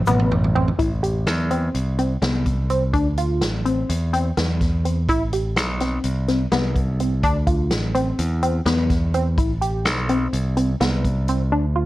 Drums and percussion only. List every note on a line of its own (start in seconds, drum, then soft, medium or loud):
0.07 mid tom medium
0.07 shaker medium
0.20 mid tom medium
0.31 floor tom medium
0.44 floor tom medium
0.55 floor tom medium
0.68 floor tom medium
0.79 kick medium
0.79 closed hi-hat medium
1.03 closed hi-hat medium
1.27 snare loud
1.27 closed hi-hat medium
1.51 closed hi-hat soft
1.75 closed hi-hat medium
1.99 closed hi-hat soft
2.22 snare loud
2.22 closed hi-hat medium
2.46 kick medium
2.46 closed hi-hat medium
2.70 closed hi-hat medium
2.94 kick medium
2.94 closed hi-hat medium
3.18 closed hi-hat medium
3.42 snare loud
3.42 closed hi-hat medium
3.66 closed hi-hat medium
3.90 closed hi-hat medium
4.14 closed hi-hat medium
4.37 snare loud
4.37 closed hi-hat medium
4.61 kick medium
4.61 snare soft
4.61 closed hi-hat medium
4.85 closed hi-hat medium
5.09 kick medium
5.09 closed hi-hat medium
5.33 closed hi-hat medium
5.56 snare loud
5.56 closed hi-hat medium
5.80 snare soft
5.80 closed hi-hat soft
6.04 closed hi-hat medium
6.28 snare soft
6.28 closed hi-hat soft
6.52 snare loud
6.52 closed hi-hat medium
6.76 kick medium
6.76 closed hi-hat medium
7.00 closed hi-hat medium
7.23 kick medium
7.23 closed hi-hat medium
7.47 kick medium
7.47 closed hi-hat medium
7.71 snare loud
7.71 closed hi-hat medium
7.95 closed hi-hat medium
8.19 closed hi-hat medium
8.43 closed hi-hat medium
8.66 snare loud
8.66 closed hi-hat medium
8.90 kick medium
8.90 snare soft
8.90 closed hi-hat medium
9.14 closed hi-hat soft
9.38 kick medium
9.38 closed hi-hat medium
9.62 closed hi-hat medium
9.85 snare loud
9.85 closed hi-hat medium
10.09 closed hi-hat soft
10.33 closed hi-hat medium
10.57 closed hi-hat medium
10.80 snare loud
10.80 closed hi-hat medium
11.04 kick medium
11.04 closed hi-hat medium
11.28 closed hi-hat medium